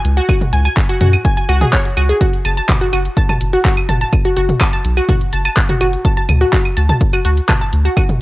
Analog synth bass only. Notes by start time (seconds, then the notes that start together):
0.05 C#2
0.53 C#2
1.01 F#2
1.49 C#2
1.97 C#2
2.45 F#1
2.93 F#1
3.41 F#1
3.89 F#1
4.37 F#1
4.85 B1
5.33 F#1
5.81 F#1
6.29 D2
6.77 D2
7.25 D2
7.73 D2